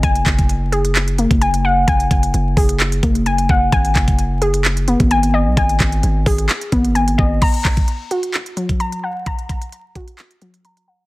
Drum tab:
CC |----------------|----------------|----------------|----------------|
HH |xxxxx-xxxxxxxx--|xxxxx-oxxxxxxx--|xxxxx-xxxxxxxx--|xxxxx-oxxxxxxx--|
CP |--x-----x-------|--------x-------|--x-----x-------|--x-----x-------|
BD |o-oo-------o----|o-o---o---o---o-|o-oo-------o----|o-o---o---o---o-|

CC |x---------------|----------------|
HH |xxxxx-xxxxxxxx--|xxxxx-xxxxxxxx--|
CP |--x-----x-------|--------x-------|
BD |o-oo-------o----|o-o---o---------|